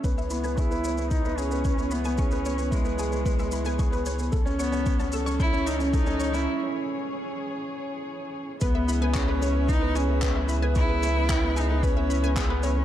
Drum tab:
SH |xxxxxxxxxxxxxxxx|xxxxxxxxxxxxxxxx|xxxxxxxxxxxxxxxx|----------------|
CP |----------------|----------------|----------------|----------------|
BD |o---o---o---o---|o---o---o---o---|o---o---o---o---|----------------|

SH |x-x-x-x-x-x-x-x-|x-x-x-x-x-x-x-x-|
CP |----x-------x---|----x-------x---|
BD |o---o---o---o---|o---o---o---o---|